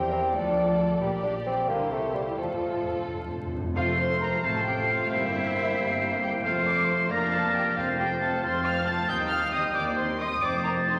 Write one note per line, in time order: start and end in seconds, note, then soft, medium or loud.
0.00 0.32 E2 medium
0.00 0.11 C4 medium
0.00 0.32 G4 medium
0.00 0.33 A#4 medium
0.00 0.32 G5 medium
0.11 0.19 E3 medium
0.11 0.36 C4 medium
0.33 1.01 D2 medium
0.33 0.99 F3 medium
0.33 1.00 D4 loud
0.33 1.00 F4 medium
0.33 0.99 A4 medium
0.33 0.99 D5 medium
1.00 1.69 A#1 medium
1.00 1.23 A#2 medium
1.00 1.11 G3 medium
1.00 1.68 G4 medium
1.00 1.67 G4 medium
1.00 1.67 D5 medium
1.23 1.31 F3 medium
1.23 1.33 D4 medium
1.46 1.54 E3 medium
1.46 1.70 C4 medium
1.68 2.36 C2 medium
1.68 1.91 D3 medium
1.68 1.91 A#3 medium
1.68 2.37 E4 medium
1.68 2.36 G4 medium
1.68 2.36 C5 medium
1.91 2.14 C3 medium
1.91 2.14 A3 medium
2.14 2.22 A#2 medium
2.14 2.22 G3 medium
2.31 2.40 G3 soft
2.37 2.44 F2 soft
2.37 3.56 F2 medium
2.37 3.05 A2 medium
2.37 3.07 F3 medium
2.37 3.56 F4 medium
2.37 3.55 A4 medium
2.37 3.53 C5 soft
2.45 2.52 F2 soft
2.53 2.59 F2 soft
2.60 2.67 F2 soft
2.68 2.74 F2 soft
2.76 2.83 F2 soft
2.84 2.90 F2 soft
2.91 2.98 F2 soft
2.99 3.06 F2 soft
3.07 3.14 F2 soft
3.15 3.21 F2 medium
3.23 3.29 F2 medium
3.31 3.38 F2 medium
3.39 3.45 F2 medium
3.46 3.52 F2 medium
3.53 3.60 F2 medium
3.61 3.68 F2 medium
3.76 4.36 F1 medium
3.76 4.36 F2 medium
3.76 4.40 F2 medium
3.76 4.40 A3 medium
3.76 5.07 A3 medium
3.76 3.87 C4 medium
3.76 6.40 C4 medium
3.76 3.97 F4 medium
3.76 3.87 F4 medium
3.76 4.40 C5 medium
3.76 3.84 F5 medium
3.76 4.40 F5 soft
3.76 4.40 C7 medium
3.87 3.98 A3 soft
3.87 3.98 A4 soft
3.98 4.10 C4 soft
3.98 4.10 F4 soft
3.98 4.21 C5 medium
3.98 4.21 C6 medium
4.10 4.21 A3 soft
4.10 4.21 A4 soft
4.21 4.32 C4 soft
4.21 4.32 F4 soft
4.21 4.29 A#4 medium
4.21 4.44 A#5 medium
4.32 4.44 A3 soft
4.32 4.44 A4 soft
4.43 5.03 A1 medium
4.43 5.03 A2 medium
4.43 5.12 A3 medium
4.43 4.54 C4 soft
4.43 4.54 F4 medium
4.43 4.52 A4 medium
4.43 5.10 C5 medium
4.43 5.10 F5 medium
4.43 4.67 A5 medium
4.43 5.10 C7 medium
4.55 4.66 A3 soft
4.55 4.66 A4 soft
4.66 4.77 C4 soft
4.66 4.77 F4 soft
4.66 4.74 G4 medium
4.66 4.89 G5 medium
4.77 4.89 A3 soft
4.77 4.89 A4 soft
4.89 4.99 C4 soft
4.89 5.11 F4 medium
4.89 4.99 F4 soft
4.89 5.12 F5 medium
5.00 5.11 A3 soft
5.00 5.11 A4 soft
5.11 5.70 G1 medium
5.11 5.70 G2 medium
5.11 5.21 G3 medium
5.11 6.46 A#3 medium
5.11 6.45 A#3 medium
5.11 5.21 C4 medium
5.11 6.22 E4 medium
5.11 6.42 C5 medium
5.11 6.22 E5 medium
5.11 6.41 G5 medium
5.11 6.42 C7 medium
5.22 5.33 A#3 soft
5.22 5.33 E4 soft
5.33 5.44 G3 soft
5.33 5.44 C4 soft
5.44 5.55 A#3 soft
5.44 5.55 E4 soft
5.55 5.65 G3 soft
5.55 5.65 C4 soft
5.66 5.77 A#3 soft
5.66 5.77 E4 soft
5.77 6.36 G1 medium
5.77 6.37 G2 medium
5.77 5.88 G3 soft
5.77 5.88 C4 soft
5.88 6.00 A#3 soft
5.88 6.00 E4 soft
5.99 6.10 G3 soft
5.99 6.10 C4 soft
6.11 6.22 A#3 soft
6.11 6.22 E4 soft
6.22 6.33 G3 soft
6.22 6.33 C4 soft
6.22 6.30 G4 medium
6.22 6.31 G5 medium
6.33 6.44 A#3 soft
6.33 6.44 E4 soft
6.43 7.03 F1 medium
6.43 7.03 F2 medium
6.43 6.54 F3 medium
6.43 7.11 A3 medium
6.43 7.12 A3 medium
6.43 7.09 C4 medium
6.43 6.55 C4 medium
6.43 6.66 F4 medium
6.43 7.12 C5 medium
6.43 7.09 F5 medium
6.43 6.53 F5 medium
6.43 7.09 C7 medium
6.55 6.66 A3 soft
6.55 6.66 F4 soft
6.66 6.78 F3 soft
6.66 6.78 C4 medium
6.66 6.88 D5 medium
6.66 6.88 D6 medium
6.78 6.89 A3 soft
6.78 6.89 F4 soft
6.88 6.99 F3 soft
6.88 6.99 C4 soft
6.88 7.10 C5 medium
6.88 7.11 C6 medium
7.00 7.11 A3 soft
7.00 7.11 F4 soft
7.10 7.69 F1 medium
7.10 7.69 F2 medium
7.10 7.21 F3 medium
7.10 7.76 A#3 medium
7.10 7.78 A#3 medium
7.10 7.76 D4 medium
7.10 7.21 D4 medium
7.10 7.32 A#4 medium
7.10 7.76 D5 medium
7.10 7.75 F5 medium
7.10 7.33 A#5 medium
7.10 7.78 A#6 medium
7.22 7.33 A#3 soft
7.22 7.33 F4 soft
7.32 7.43 F3 soft
7.32 7.43 D4 soft
7.32 7.55 A4 medium
7.32 7.54 A5 medium
7.44 7.55 A#3 medium
7.44 7.55 F4 soft
7.54 7.65 F3 soft
7.54 7.65 D4 soft
7.54 7.76 G4 medium
7.54 7.77 G5 medium
7.66 7.77 A#3 soft
7.66 7.77 F4 soft
7.76 8.35 F1 medium
7.76 8.35 F2 medium
7.76 8.39 F2 medium
7.76 7.87 F3 medium
7.76 9.06 A3 medium
7.76 9.06 C4 medium
7.76 8.42 C4 medium
7.76 7.87 C4 medium
7.76 7.85 F4 medium
7.76 8.42 C5 medium
7.76 8.42 F5 medium
7.76 7.85 F5 medium
7.76 8.42 A6 medium
7.89 7.99 A3 soft
7.89 7.99 F4 medium
7.99 8.10 F3 medium
7.99 8.10 C4 medium
7.99 8.07 G4 medium
7.99 8.21 G5 medium
8.11 8.21 A3 soft
8.11 8.21 F4 medium
8.21 8.31 F3 medium
8.21 8.31 C4 soft
8.21 8.42 A4 medium
8.21 8.43 A5 medium
8.31 8.43 A3 medium
8.31 8.43 F4 soft
8.43 9.01 F1 medium
8.43 9.01 F2 medium
8.43 8.54 F3 soft
8.43 9.08 C4 medium
8.43 8.54 C4 medium
8.43 9.08 C5 medium
8.43 8.65 C5 medium
8.43 9.11 F5 medium
8.43 8.65 C6 medium
8.43 9.10 A6 medium
8.54 8.65 A3 soft
8.54 8.65 F4 soft
8.65 8.76 F3 soft
8.65 8.76 C4 soft
8.65 8.87 F5 medium
8.65 8.87 F6 medium
8.76 8.87 A3 soft
8.76 8.87 F4 soft
8.87 8.98 F3 soft
8.87 8.98 C4 soft
8.87 9.09 A5 medium
8.87 9.09 A6 medium
8.98 9.09 A3 soft
8.98 9.09 F4 medium
9.09 9.68 D#2 medium
9.09 9.19 D#3 medium
9.09 9.19 C4 medium
9.09 10.13 C4 medium
9.09 10.13 C5 medium
9.09 10.15 D#5 medium
9.09 9.31 G5 medium
9.09 9.17 G6 medium
9.09 10.15 G6 medium
9.20 9.31 G3 medium
9.20 9.31 D#4 medium
9.31 9.42 D#3 medium
9.31 9.42 C4 medium
9.31 9.53 F5 medium
9.31 9.53 F6 medium
9.42 9.53 G3 medium
9.42 9.53 D#4 soft
9.53 9.64 D#3 medium
9.53 9.61 G3 medium
9.53 9.61 C4 medium
9.53 9.64 C4 medium
9.53 9.76 D#5 medium
9.53 9.75 D#6 medium
9.65 9.76 G3 soft
9.65 9.76 D#4 soft
9.75 10.34 D#2 medium
9.75 9.87 D#3 medium
9.75 9.87 C4 medium
9.75 9.98 D5 medium
9.75 9.83 D6 loud
9.87 9.98 G3 medium
9.87 9.98 D#4 soft
9.98 10.08 D#3 medium
9.98 10.09 C4 medium
9.98 10.06 C5 medium
9.98 10.20 C6 medium
10.09 10.20 G3 soft
10.09 10.20 D#4 soft
10.19 10.32 D#3 soft
10.19 10.27 G3 medium
10.19 10.28 C4 medium
10.19 10.32 C4 soft
10.19 10.28 D#5 medium
10.19 10.43 D#6 medium
10.31 10.42 G3 medium
10.31 10.42 D#4 medium
10.42 10.99 F1 medium
10.42 10.99 F2 medium
10.42 10.99 C4 medium
10.42 10.53 C4 medium
10.42 10.53 D#4 medium
10.42 10.99 C5 medium
10.42 10.50 D5 medium
10.42 10.99 D#5 medium
10.42 10.64 D6 loud
10.42 10.99 A6 medium
10.54 10.65 A3 soft
10.54 10.65 F4 soft
10.64 10.76 C4 soft
10.64 10.76 D#4 medium
10.64 10.73 A#4 medium
10.64 10.72 A#5 medium
10.76 10.87 A3 medium
10.76 10.87 F4 soft
10.86 10.94 A3 medium
10.86 10.97 C4 soft
10.86 10.94 D#4 medium
10.86 10.97 D#4 soft
10.86 10.99 C5 medium
10.86 10.99 C6 medium